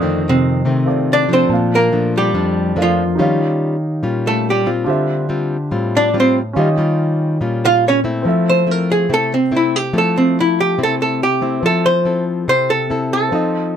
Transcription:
0.00 0.64 F2 medium
0.00 0.22 D3 medium
0.00 0.62 D#3 medium
0.00 0.62 A3 medium
0.00 0.83 C4 soft
0.00 0.63 C4 medium
0.00 0.21 D4 medium
0.00 0.84 F4 soft
0.00 0.85 A4 soft
0.00 0.86 D#6 medium
0.29 0.86 C3 medium
0.29 0.86 C4 medium
0.65 1.48 C3 medium
0.65 1.25 D#3 medium
0.65 1.26 A3 medium
0.65 1.26 C4 medium
0.85 1.49 C4 soft
0.85 1.49 F4 soft
0.85 1.50 A4 soft
0.85 1.51 D5 medium
1.13 1.31 D4 medium
1.13 1.31 D5 medium
1.29 1.89 F3 medium
1.29 1.89 A3 medium
1.29 1.89 D4 medium
1.33 1.70 C4 medium
1.33 1.70 C5 medium
1.47 2.32 A#2 medium
1.47 2.73 D4 medium
1.47 2.74 A5 soft
1.52 2.75 A#3 soft
1.52 2.76 F5 medium
1.75 2.13 A#3 medium
1.75 2.13 A#4 medium
1.92 2.31 F3 medium
1.92 2.31 A3 medium
1.92 2.31 D4 medium
2.17 2.75 G3 medium
2.17 2.75 G4 medium
2.34 3.16 F2 medium
2.34 2.73 F3 medium
2.34 2.73 A3 medium
2.34 2.73 D4 medium
2.75 3.04 F3 medium
2.75 3.04 A3 medium
2.75 3.18 D4 soft
2.75 3.04 D4 medium
2.75 3.18 A4 soft
2.75 3.19 A#4 soft
2.75 3.19 F5 soft
2.82 3.39 F3 medium
2.82 3.39 F4 medium
3.15 4.01 D#3 medium
3.15 3.76 G3 medium
3.15 3.76 C#4 medium
3.15 4.82 D#4 medium
3.15 4.83 G4 soft
3.19 3.76 F4 medium
3.19 4.84 C#5 soft
3.19 4.85 F5 medium
4.03 4.85 A#2 medium
4.03 4.63 G3 soft
4.03 4.63 C#4 soft
4.03 4.63 F4 medium
4.27 4.47 A3 medium
4.27 4.46 A4 medium
4.50 4.69 G3 soft
4.50 4.68 G4 medium
4.66 5.26 G3 medium
4.66 5.26 C4 medium
4.66 5.27 F4 medium
4.84 5.69 D3 medium
4.84 6.51 D4 medium
4.84 6.52 F4 medium
4.84 6.53 G4 medium
4.89 6.53 C5 soft
4.89 6.54 E5 medium
5.29 5.56 G3 medium
5.29 5.57 C4 medium
5.29 5.57 F4 medium
5.71 6.54 A2 medium
5.71 6.10 G3 soft
5.71 6.11 C4 soft
5.71 6.11 F4 medium
5.97 6.15 D4 medium
5.97 6.15 D5 medium
6.14 6.41 G3 medium
6.14 6.41 C4 medium
6.14 6.41 F4 medium
6.20 6.37 C4 medium
6.20 6.37 C5 medium
6.53 7.39 D#3 medium
6.53 6.69 G3 medium
6.53 8.20 C#4 medium
6.53 6.69 C#4 medium
6.53 8.21 F4 medium
6.53 6.69 F4 medium
6.53 8.22 G4 medium
6.59 8.23 D#5 medium
6.78 7.37 G3 medium
6.78 7.38 C#4 medium
6.78 7.38 F4 medium
7.41 8.23 A#2 medium
7.41 8.01 G3 soft
7.41 8.01 C#4 medium
7.41 8.01 F4 medium
7.65 7.84 F4 medium
7.65 7.84 F5 loud
7.88 8.00 C#4 medium
7.88 7.99 C#5 medium
8.04 8.64 A3 medium
8.04 8.64 C4 medium
8.04 8.64 E4 medium
8.22 9.07 F3 medium
8.22 11.57 C4 medium
8.26 11.59 A4 medium
8.26 11.60 E5 medium
8.50 8.71 C5 medium
8.67 9.06 A3 medium
8.67 9.06 C4 medium
8.67 9.06 E4 medium
8.71 8.90 A#4 medium
8.92 9.10 G#4 medium
9.09 9.92 C3 medium
9.09 9.37 A3 medium
9.09 9.37 C4 medium
9.09 9.37 E4 medium
9.14 9.32 A4 medium
9.34 9.53 C4 medium
9.51 9.79 A3 medium
9.51 9.79 C4 medium
9.51 9.79 E4 medium
9.57 9.76 E4 medium
9.76 9.95 G4 medium
9.93 10.76 F3 medium
9.93 10.75 A3 medium
9.93 10.75 C4 medium
9.93 10.75 E4 medium
9.98 10.16 A4 medium
10.18 10.37 C4 medium
10.40 10.59 E4 medium
10.60 10.79 G4 medium
10.78 11.61 C3 medium
10.78 11.20 A3 medium
10.78 11.20 C4 medium
10.78 11.20 E4 medium
10.83 10.95 A4 medium
11.02 11.22 A4 medium
11.23 11.65 G4 medium
11.41 11.62 A3 medium
11.41 12.02 C4 medium
11.41 12.02 E4 medium
11.60 12.45 F3 medium
11.60 13.27 C4 soft
11.64 13.29 A4 soft
11.64 11.86 A4 loud
11.64 13.30 E5 medium
11.86 12.24 C5 medium
12.05 12.86 C4 medium
12.05 12.87 E4 soft
12.05 12.87 A4 medium
12.48 13.30 C3 medium
12.48 12.70 C5 loud
12.70 13.09 A4 medium
12.90 13.29 C4 soft
12.90 13.29 E4 soft
12.90 13.29 A4 medium
13.13 13.77 A4 medium
13.29 13.77 F3 medium
13.29 13.77 C4 soft
13.29 13.77 C4 medium
13.29 13.77 D#4 medium
13.29 13.77 F4 soft
13.29 13.77 A4 soft
13.33 13.77 A4 medium
13.33 13.77 D#5 medium

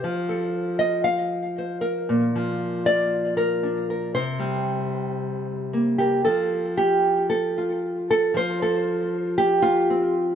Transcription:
0.00 2.34 F3 medium
0.00 1.30 C5 medium
0.29 2.06 A4 medium
0.79 1.04 D#5 medium
1.04 2.08 F5 medium
1.58 1.81 C5 soft
1.81 3.10 A#4 medium
2.09 4.11 A#2 medium
2.36 4.15 F3 medium
2.86 3.37 D5 loud
3.37 3.88 A#4 medium
3.63 4.11 D4 soft
3.90 4.12 A#4 soft
4.14 6.25 C3 medium
4.14 5.98 C5 loud
4.39 6.21 G3 medium
5.73 6.26 A#3 soft
5.98 6.24 G4 medium
5.98 6.23 A#4 soft
6.25 8.33 F3 medium
6.25 6.77 A4 medium
6.77 7.29 G4 medium
7.30 8.08 A4 medium
7.58 8.32 F4 soft
8.11 8.35 A4 medium
8.34 10.35 F3 medium
8.34 8.62 C5 loud
8.62 9.37 A4 medium
9.38 10.15 G4 loud
9.62 10.35 F4 loud
9.90 10.35 C4 soft

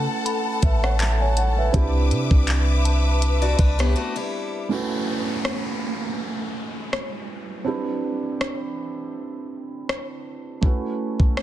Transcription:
0.00 1.69 A3 medium
0.00 1.70 C#4 medium
0.00 1.70 E4 medium
0.00 1.71 F#4 medium
0.00 1.71 A4 medium
0.00 0.63 B4 medium
0.00 1.71 F#5 medium
0.00 1.71 A5 medium
0.26 2.07 B5 medium
0.26 closed hi-hat medium
0.62 1.70 A1 loud
0.62 0.82 B4 medium
0.62 0.82 E5 medium
0.62 kick loud
0.62 closed hi-hat medium
0.83 1.00 C#5 medium
0.83 0.99 F#5 medium
0.83 cross-stick loud
1.00 1.19 E5 medium
1.00 1.19 A5 medium
1.00 clap loud
1.00 closed hi-hat medium
1.20 1.36 C#5 medium
1.20 1.36 G#5 medium
1.37 1.56 C#5 medium
1.37 1.56 F#5 medium
1.37 closed hi-hat medium
1.57 1.75 B4 medium
1.57 1.92 E5 medium
1.72 2.12 C2 loud
1.72 4.65 C4 medium
1.72 4.66 D4 medium
1.72 4.67 E4 medium
1.72 4.67 G4 medium
1.72 4.67 B4 medium
1.72 4.67 E5 medium
1.72 4.67 D6 medium
1.72 kick loud
1.72 closed hi-hat medium
1.77 4.68 B4 medium
2.11 2.30 C3 loud
2.11 closed hi-hat medium
2.31 3.55 C2 loud
2.31 kick medium
2.47 clap loud
2.47 closed hi-hat medium
2.85 5.03 A5 medium
2.85 closed hi-hat medium
3.22 closed hi-hat medium
3.42 3.58 F#4 medium
3.42 3.58 D5 medium
3.59 3.95 C2 loud
3.59 3.78 D4 medium
3.59 3.78 B4 medium
3.59 kick loud
3.59 closed hi-hat medium
3.79 3.95 B3 medium
3.79 3.95 G4 medium
3.79 cross-stick loud
3.96 4.15 A3 medium
3.96 4.15 F#4 medium
4.16 4.68 G3 medium
4.16 4.67 E4 medium
4.69 7.62 A3 medium
4.69 7.62 C#4 medium
4.69 7.63 E4 medium
4.69 7.63 F#4 medium
4.69 downlifter medium
4.73 7.64 B4 medium
5.45 cross-stick loud
6.93 cross-stick loud
7.64 10.58 C4 medium
7.64 10.58 D4 medium
7.64 10.59 E4 medium
7.64 10.59 G4 medium
7.69 10.60 B4 medium
8.41 cross-stick loud
9.89 cross-stick loud
10.61 11.42 A3 medium
10.61 11.42 C#4 medium
10.61 11.42 E4 medium
10.61 11.42 F#4 medium
10.61 kick medium
10.65 11.42 B4 medium
11.20 kick medium
11.37 cross-stick loud

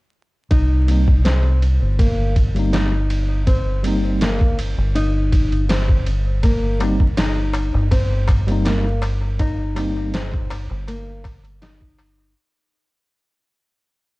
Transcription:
0.51 1.78 C2 medium
0.51 1.21 D#4 medium
0.51 kick medium
0.51 ride medium
0.87 1.11 G3 medium
0.87 1.11 A#3 medium
0.87 1.12 C4 medium
0.87 ride medium
0.91 1.13 D#4 medium
1.08 kick medium
1.25 1.60 C4 medium
1.25 snare loud
1.25 ride medium
1.62 ride medium
1.82 4.74 G1 medium
1.99 2.34 A#3 medium
1.99 kick loud
1.99 ride medium
2.36 kick medium
2.36 ride medium
2.55 2.91 G3 medium
2.55 2.91 A#3 medium
2.55 2.92 C4 medium
2.55 ride soft
2.59 2.93 D#4 medium
2.73 3.44 D#4 loud
2.73 snare loud
2.73 ride medium
3.10 ride medium
3.47 3.82 C4 medium
3.47 kick medium
3.47 ride medium
3.83 4.19 G3 medium
3.83 4.20 A#3 medium
3.83 4.21 C4 medium
3.83 ride medium
3.88 4.22 D#4 medium
4.21 4.57 A#3 medium
4.21 snare loud
4.21 ride medium
4.41 kick medium
4.59 ride medium
4.78 7.70 G1 medium
4.95 5.66 D#4 medium
4.95 ride medium
5.32 kick medium
5.32 ride medium
5.52 ride soft
5.69 6.05 C4 medium
5.69 snare loud
5.69 ride medium
5.89 kick medium
6.06 ride medium
6.43 6.79 A#3 medium
6.43 kick medium
6.43 ride medium
6.43 darbuka tek soft
6.63 darbuka tek soft
6.79 7.03 G3 medium
6.79 7.04 A#3 medium
6.79 7.04 C4 medium
6.79 ride medium
6.79 darbuka tek medium
6.84 7.05 D#4 medium
7.00 kick medium
7.00 darbuka tek soft
7.17 7.88 D#4 loud
7.17 snare loud
7.17 ride medium
7.17 darbuka tek medium
7.37 darbuka tek soft
7.53 ride medium
7.53 darbuka tek medium
7.74 10.67 G1 medium
7.74 darbuka tek soft
7.91 8.27 C4 medium
7.91 kick loud
7.91 ride medium
7.91 darbuka tek soft
8.11 darbuka tek soft
8.28 kick medium
8.28 ride medium
8.28 darbuka tek medium
8.47 8.83 G3 medium
8.47 8.84 A#3 medium
8.47 8.85 C4 medium
8.47 ride soft
8.47 darbuka tek soft
8.51 8.85 D#4 medium
8.65 9.01 A#3 medium
8.65 snare loud
8.65 ride medium
8.65 darbuka tek soft
8.85 darbuka tek soft
9.02 ride medium
9.02 darbuka tek medium
9.21 darbuka tek soft
9.39 10.10 D#4 medium
9.39 kick loud
9.39 ride medium
9.39 darbuka tek medium
9.59 darbuka tek soft
9.75 10.12 G3 medium
9.75 10.12 A#3 medium
9.75 10.13 C4 medium
9.75 ride medium
9.75 darbuka tek medium
9.80 10.14 D#4 medium
9.97 darbuka tek soft
10.14 10.49 C4 medium
10.14 snare loud
10.14 ride medium
10.14 darbuka tek soft
10.34 kick medium
10.34 darbuka tek soft
10.50 ride medium
10.50 darbuka tek medium
10.70 12.33 G1 medium
10.70 darbuka tek soft
10.88 11.23 A#3 medium
10.88 ride medium
10.88 darbuka tek medium
11.07 darbuka tek soft
11.24 kick medium
11.24 ride medium
11.24 darbuka tek medium
11.44 ride soft
11.44 darbuka tek soft
11.62 12.33 D#4 loud
11.62 snare loud
11.62 ride medium
11.62 darbuka tek medium
11.81 kick medium
11.81 darbuka tek soft
11.98 ride medium
11.98 darbuka tek loud
12.18 darbuka tek soft

